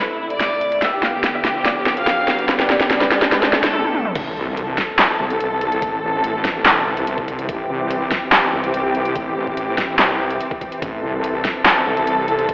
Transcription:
0.00 0.79 C3 medium
0.00 0.79 A3 medium
0.00 0.79 E4 medium
0.00 riser medium
0.09 0.18 E4 medium
0.19 0.28 E4 medium
0.30 0.74 D5 loud
0.30 closed hi-hat medium
0.40 snare medium
0.40 closed hi-hat medium
0.61 closed hi-hat medium
0.72 closed hi-hat medium
0.82 4.12 D3 medium
0.82 4.12 B3 medium
0.82 4.12 G4 medium
0.82 0.91 E5 loud
0.82 snare medium
0.82 closed hi-hat medium
0.93 1.01 G4 medium
1.03 1.11 F5 medium
1.03 snare medium
1.14 1.22 G4 medium
1.24 1.32 G4 medium
1.24 snare medium
1.24 closed hi-hat medium
1.34 1.43 E5 medium
1.45 1.53 G4 medium
1.45 snare medium
1.45 closed hi-hat medium
1.55 1.63 G4 medium
1.65 1.74 D5 medium
1.65 snare medium
1.65 closed hi-hat medium
1.76 1.84 G4 medium
1.86 1.95 G4 medium
1.86 snare medium
1.97 2.41 F5 loud
1.97 closed hi-hat medium
2.07 snare medium
2.07 closed hi-hat medium
2.28 snare loud
2.28 closed hi-hat medium
2.39 closed hi-hat medium
2.49 2.57 B4 loud
2.49 snare medium
2.49 closed hi-hat medium
2.59 2.68 D4 medium
2.59 snare medium
2.70 2.78 D5 loud
2.70 snare medium
2.80 2.88 D4 medium
2.80 snare medium
2.90 2.99 D4 medium
2.90 snare loud
2.90 closed hi-hat medium
3.01 3.09 B4 medium
3.01 snare medium
3.11 3.20 D4 medium
3.11 snare loud
3.11 closed hi-hat medium
3.22 3.30 D4 medium
3.22 snare medium
3.32 3.41 B4 medium
3.32 snare loud
3.32 closed hi-hat medium
3.43 3.51 D4 medium
3.43 snare loud
3.53 3.61 D4 medium
3.53 snare loud
3.63 3.74 A4 loud
3.63 snare medium
3.63 closed hi-hat soft
3.74 high tom medium
3.84 high tom medium
3.95 mid tom medium
4.05 mid tom medium
4.15 4.35 A1 medium
4.15 12.54 E3 medium
4.15 12.54 C4 medium
4.15 7.48 A4 medium
4.15 kick loud
4.15 closed hi-hat medium
4.15 crash loud
4.15 impact medium
4.36 4.76 C2 medium
4.57 closed hi-hat medium
4.78 kick loud
4.78 snare medium
4.78 open hi-hat medium
4.99 snare loud
4.99 clap medium
4.99 closed hi-hat medium
5.20 5.81 C2 medium
5.30 closed hi-hat medium
5.40 closed hi-hat medium
5.61 closed hi-hat medium
5.72 closed hi-hat medium
5.82 6.01 A1 medium
5.82 kick loud
5.82 closed hi-hat medium
6.03 6.64 A1 medium
6.24 closed hi-hat medium
6.45 kick loud
6.45 snare medium
6.45 open hi-hat medium
6.66 6.85 E1 loud
6.66 snare loud
6.66 clap medium
6.66 closed hi-hat medium
6.86 7.47 C2 loud
6.97 closed hi-hat medium
7.07 closed hi-hat medium
7.18 kick loud
7.28 kick medium
7.28 closed hi-hat medium
7.39 closed hi-hat medium
7.49 7.68 A1 medium
7.49 10.81 G4 medium
7.49 kick loud
7.49 closed hi-hat medium
7.70 8.10 C2 medium
7.91 closed hi-hat medium
8.11 kick loud
8.11 snare medium
8.11 open hi-hat medium
8.32 snare loud
8.32 clap medium
8.32 closed hi-hat medium
8.53 9.14 C2 loud
8.64 closed hi-hat medium
8.74 closed hi-hat medium
8.95 closed hi-hat medium
9.05 closed hi-hat medium
9.15 9.35 A1 loud
9.15 kick loud
9.15 closed hi-hat medium
9.36 9.97 A1 loud
9.47 kick medium
9.57 closed hi-hat medium
9.78 kick loud
9.78 snare medium
9.78 open hi-hat medium
9.99 10.39 C2 medium
9.99 snare loud
9.99 clap medium
9.99 closed hi-hat medium
10.30 closed hi-hat soft
10.41 closed hi-hat medium
10.51 kick loud
10.61 kick medium
10.61 closed hi-hat medium
10.72 closed hi-hat medium
10.82 11.01 A1 medium
10.82 12.54 A4 medium
10.82 kick loud
10.82 closed hi-hat medium
11.03 11.43 C2 loud
11.24 closed hi-hat medium
11.45 kick loud
11.45 snare medium
11.45 open hi-hat medium
11.66 snare loud
11.66 clap medium
11.66 closed hi-hat medium
11.86 12.47 C2 loud
11.97 closed hi-hat soft
12.07 closed hi-hat medium
12.28 closed hi-hat medium
12.39 closed hi-hat medium
12.49 12.54 A1 medium
12.49 kick loud
12.49 closed hi-hat medium

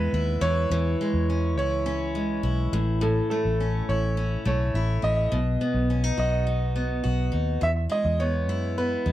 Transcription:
0.00 0.48 E2 medium
0.00 1.00 G#3 medium
0.00 0.48 B3 medium
0.00 0.13 E4 medium
0.00 0.43 B4 loud
0.13 0.37 D#2 medium
0.13 1.58 E4 medium
0.41 0.65 E2 medium
0.41 0.71 E3 medium
0.41 1.53 C#5 loud
0.70 0.94 E2 loud
0.70 4.21 E3 medium
1.01 2.14 G#3 medium
1.14 1.57 E2 medium
1.30 1.85 C#4 medium
1.57 2.40 C#2 medium
1.57 2.43 E4 medium
1.57 2.69 C#5 medium
1.86 3.60 C#4 medium
2.15 2.78 G#3 medium
2.43 2.67 B1 medium
2.43 3.89 E4 medium
2.73 3.20 A1 medium
2.73 3.00 A2 medium
3.01 5.31 A2 medium
3.01 3.29 A4 medium
3.30 4.44 A3 medium
3.30 3.84 A4 medium
3.45 3.80 A1 medium
3.60 4.16 C#4 medium
3.89 4.36 A1 medium
3.89 4.74 E4 medium
3.89 4.46 C#5 medium
4.17 5.01 C#4 medium
4.45 4.69 B1 medium
4.45 5.38 A3 medium
4.45 5.00 C#5 medium
4.74 4.98 A1 medium
4.74 5.38 E4 medium
5.02 5.27 A1 medium
5.02 5.37 C#4 medium
5.02 6.18 D#5 loud
5.32 5.56 B1 medium
5.32 7.63 B2 medium
5.61 6.75 B3 medium
5.74 6.10 B1 medium
5.90 6.04 C#4 medium
6.04 6.46 D#4 soft
6.17 7.01 B1 medium
6.17 7.02 F#4 medium
6.17 7.30 D#5 medium
6.47 7.30 D#4 medium
6.76 7.68 B3 medium
7.04 7.29 B1 medium
7.04 7.68 F#4 medium
7.32 7.57 D#2 medium
7.32 7.68 D#4 medium
7.61 9.12 E2 medium
7.61 7.86 E2 medium
7.61 7.70 E5 loud
7.89 9.05 G#3 medium
7.89 8.21 D#5 loud
8.05 8.48 E2 medium
8.20 8.77 B3 medium
8.20 8.80 C#5 medium
8.48 8.96 F#2 medium
8.48 9.12 E4 medium
8.78 9.12 B3 medium
8.78 9.12 B4 medium
9.06 9.12 E2 medium
9.06 9.12 G#3 medium

